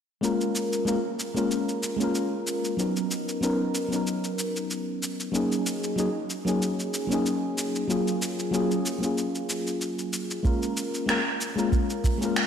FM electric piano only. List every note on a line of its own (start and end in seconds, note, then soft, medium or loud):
0.21 0.83 G#3 medium
0.21 0.83 A#3 medium
0.21 0.83 C#4 medium
0.21 0.84 F4 medium
0.21 0.84 A#4 medium
0.85 0.97 G#3 medium
0.85 0.98 A#3 medium
0.85 0.98 C#4 medium
0.85 0.98 F4 medium
0.85 0.99 A#4 medium
1.35 1.95 G#3 medium
1.35 1.96 A#3 medium
1.35 1.96 C#4 medium
1.35 1.97 F4 medium
1.35 1.97 A#4 medium
1.97 2.73 G#3 medium
1.97 2.74 A#3 medium
1.97 2.75 C#4 medium
2.02 2.76 F4 medium
2.02 2.77 A#4 medium
2.77 3.38 F#3 medium
2.77 3.39 B3 medium
2.77 3.39 C#4 medium
2.77 3.40 D#4 medium
2.77 3.40 A#4 medium
3.41 3.87 F#3 medium
3.41 3.87 B3 medium
3.41 3.88 C#4 medium
3.41 3.88 D#4 medium
3.41 3.89 A#4 medium
3.89 5.29 F#3 medium
3.89 5.30 B3 medium
3.89 5.31 C#4 medium
3.94 5.32 D#4 medium
3.94 5.33 A#4 medium
5.32 5.93 F#3 medium
5.32 5.94 A#3 medium
5.32 5.94 C#4 medium
5.32 5.95 D#4 medium
5.32 5.95 G#4 medium
5.96 6.08 F#3 medium
5.96 6.08 A#3 medium
5.96 6.09 C#4 medium
5.96 6.09 D#4 medium
5.96 6.10 G#4 medium
6.45 7.06 F#3 medium
6.45 7.06 A#3 medium
6.45 7.07 C#4 medium
6.45 7.07 D#4 medium
6.45 7.08 G#4 medium
7.07 7.84 F#3 medium
7.07 7.85 A#3 medium
7.07 7.86 C#4 medium
7.13 7.87 D#4 medium
7.13 7.88 G#4 medium
7.88 8.49 F#3 medium
7.88 8.49 A#3 medium
7.88 8.50 C#4 medium
7.88 8.50 F4 medium
7.88 8.51 G#4 medium
8.51 8.97 F#3 medium
8.51 8.98 A#3 medium
8.51 8.98 C#4 medium
8.51 8.99 F4 medium
8.51 8.99 G#4 medium
8.99 10.39 F#3 medium
8.99 10.40 A#3 medium
8.99 10.41 C#4 medium
9.04 10.42 F4 medium
9.04 10.43 G#4 medium
10.43 11.04 G#3 medium
10.43 11.05 A#3 medium
10.43 11.05 C#4 medium
10.43 11.06 F4 medium
10.43 11.06 A#4 medium
11.06 11.18 G#3 medium
11.06 11.19 A#3 medium
11.06 11.19 C#4 medium
11.06 11.20 F4 medium
11.06 11.20 A#4 medium
11.56 12.16 G#3 medium
11.56 12.17 A#3 medium
11.56 12.17 C#4 medium
11.56 12.18 F4 medium
11.56 12.18 A#4 medium
12.18 12.47 G#3 medium
12.18 12.47 A#3 medium
12.18 12.47 C#4 medium
12.23 12.47 F4 medium
12.23 12.47 A#4 medium